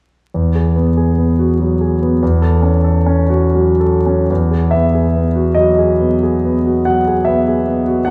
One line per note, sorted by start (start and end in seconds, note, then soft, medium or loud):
0.34 2.18 E2 soft
0.55 0.88 G#4 soft
0.76 1.09 B3 soft
0.97 1.31 G#4 soft
1.18 1.52 B3 soft
1.39 1.73 F#4 soft
1.60 1.93 F#3 soft
1.81 2.14 G#4 soft
2.02 2.22 B3 soft
2.22 4.26 E2 soft
2.42 2.75 A4 soft
2.62 2.97 C#4 soft
2.84 3.21 A4 soft
3.06 3.45 C#4 soft
3.30 3.71 F#4 soft
3.55 3.97 F#3 soft
3.80 4.20 A4 soft
4.06 4.29 C#4 soft
4.30 8.05 E2 soft
4.51 4.85 G#4 soft
4.71 5.06 B3 soft
4.71 5.56 E5 medium
4.95 5.27 G#4 soft
5.16 5.49 B3 soft
5.36 5.70 F#4 soft
5.55 5.92 F#3 soft
5.55 6.87 D#5 medium
5.79 6.14 G#4 soft
6.00 6.36 B3 soft
6.23 6.58 G#4 soft
6.45 6.79 B3 soft
6.66 7.00 F#4 soft
6.85 7.21 F#3 soft
6.85 7.28 F#5 medium
7.08 7.41 G#4 soft
7.25 7.60 B3 soft
7.25 8.06 E5 medium
7.48 7.80 G#4 soft
7.68 8.00 B3 soft
7.87 8.08 F#4 soft
8.05 8.10 C2 soft
8.05 8.10 F#5 medium